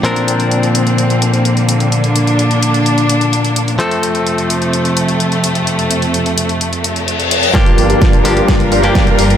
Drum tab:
HH |xxxxxxxxxxxxxxxx|xxxxxxxxxxxxxxxx|xxxxxxxxxxxxxxxx|xxxxxxxxxxxxxxxx|
SD |----------------|----------------|----------------|----------------|
BD |----------------|----------------|----------------|----------------|

HH |xxoxxxoxxxoxxxox|
SD |o---o---o---o---|
BD |o---o---o---o---|